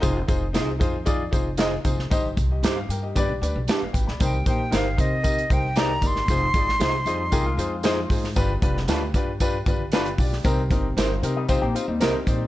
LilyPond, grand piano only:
<<
  \new Staff \with { instrumentName = "Grand piano" } { \time 4/4 \key c \minor \tempo 4 = 115 << { r1 | r8. <g' ees''>8 f''16 <bes' g''>16 <g' ees''>8 r4 f''16 <b' g''>16 <d'' b''>16~ | <d'' b''>16 r2. r8. | r1 |
r1 | r2. bes''8 d''8 | } \\ { <ees' f' aes' c''>8 <ees' f' aes' c''>8 <ees' f' aes' c''>8 <ees' f' aes' c''>8 <ees' f' aes' d''>8 <ees' f' aes' c''>8 <ees' f' aes' ees''>8 <ees' f' aes' c''>8 | <ees' g' c'' ees''>8 r4. <d' g' b' d''>8 <d' g' b' d''>8 r4 | <ees' g' bes' c''>8 <ees' g' bes' c''>8 <ees' g' bes' c''>8 <ees' g' bes' c''>8 <ees' g' bes' ees''>8 <ees' g' bes' c''>8 <ees' g' bes' d''>8 <ees' g' bes' d''>8 | <ees' f' aes' c''>8 <ees' f' aes' d''>8 <ees' f' aes' c''>8 <ees' f' aes' c''>8 <ees' f' aes' bes'>8 <ees' f' aes' c''>8 <ees' f' aes' c''>8 <ees' f' aes' c''>8 |
<d' f' g' b'>8 <d' f' g' b'>8 <d' f' g' b'>8 <d' f' g' b'>8 <d' f' g' b'>8 <d' f' g' b'>8 <d' f' g' b'>8 <d' f' g' d''>8 | <c' ees' g' bes'>8 <c' ees' g' bes'>8 <c' ees' g' c''>8 <c' ees' g' bes'>8 <c' ees' g' c''>8 <c' ees' g' c''>8 <c' ees' g' bes'>8 <c' ees' g' c''>8 | } >> }
  \new Staff \with { instrumentName = "Grand piano" } { \clef bass \time 4/4 \key c \minor r1 | g,4. r8 g,4. r8 | c4. r2 r8 | r1 |
g,4. r2 r8 | c4. r2 r8 | }
>>